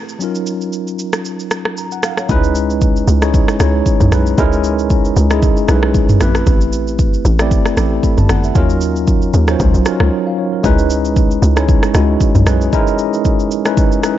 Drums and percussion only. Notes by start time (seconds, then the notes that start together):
0.09 shaker
0.21 shaker
0.35 shaker
0.46 shaker
0.61 shaker
0.73 shaker
0.87 shaker
0.99 shaker
1.13 cross-stick, shaker
1.25 shaker
1.40 shaker
1.51 cross-stick, shaker
1.65 cross-stick
1.77 shaker
1.92 shaker
2.03 cross-stick, shaker
2.17 cross-stick, shaker
2.29 kick, shaker
2.44 shaker
2.55 shaker
2.70 shaker
2.81 kick, shaker
2.96 shaker
3.08 shaker
3.22 cross-stick, shaker
3.34 kick, shaker
3.48 cross-stick, shaker
3.60 cross-stick, shaker
3.86 kick, shaker
4.01 mid tom, shaker
4.12 cross-stick, shaker
4.26 shaker
4.38 kick, shaker
4.53 shaker
4.64 shaker
4.79 shaker
4.90 kick, shaker
5.05 shaker
5.17 shaker
5.30 cross-stick, shaker
5.42 kick, shaker
5.57 shaker
5.68 cross-stick, shaker
5.83 cross-stick
5.94 kick, shaker
6.09 mid tom, shaker
6.21 cross-stick, shaker
6.35 cross-stick, shaker
6.47 kick, shaker
6.61 shaker
6.73 shaker
6.87 shaker
6.99 kick, shaker
7.14 shaker
7.25 shaker
7.39 cross-stick, shaker
7.51 kick, shaker
7.66 cross-stick, shaker
7.77 cross-stick, shaker
8.03 kick, shaker
8.18 mid tom, shaker
8.29 cross-stick, shaker
8.44 shaker
8.55 kick, shaker
8.70 shaker
8.81 shaker
8.96 shaker
9.07 kick, shaker
9.22 shaker
9.34 shaker
9.48 cross-stick, shaker
9.60 kick, shaker
9.74 shaker
9.86 cross-stick, shaker
10.00 cross-stick
10.64 kick, shaker
10.79 shaker
10.90 shaker
11.05 shaker
11.16 kick, shaker
11.31 shaker
11.43 shaker
11.57 cross-stick, shaker
11.69 kick, shaker
11.83 cross-stick, shaker
11.95 cross-stick, shaker
12.21 kick, shaker
12.35 mid tom, shaker
12.47 cross-stick, shaker
12.61 shaker
12.73 kick, shaker
12.87 shaker
12.99 shaker
13.13 shaker
13.25 kick, shaker
13.40 shaker
13.51 shaker
13.65 cross-stick, shaker
13.77 kick, shaker
13.92 shaker
14.03 cross-stick, shaker